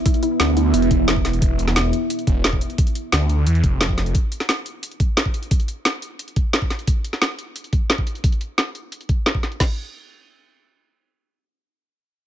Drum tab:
CC |----------------|----------------|----------------|----------------|
HH |xxx-x-x-xxx-x-xx|x-x-x-x-xxx-x-xx|xxx-x-x-xxx-x-xx|x-x-x-x-xxx-x-xx|
SD |----o-------o-o-|---oo-------o---|----o-------o-o-|---oo-------o---|
BD |o---------o--o--|o---------o--o--|o---------o--o--|o---------o--o--|

CC |----------------|----------------|----------------|x---------------|
HH |xxx-x-x-xxx-x-xx|x-x-x-x-xxx-x-xx|xxx-x-x-xxx-x-xx|----------------|
SD |----o-------o-o-|---oo-------o---|----o-------o-o-|o---------------|
BD |o---------o--o--|o---------o--o--|o---------o--o--|o---------------|

CC |----------------|
HH |----------------|
SD |----------------|
BD |----------------|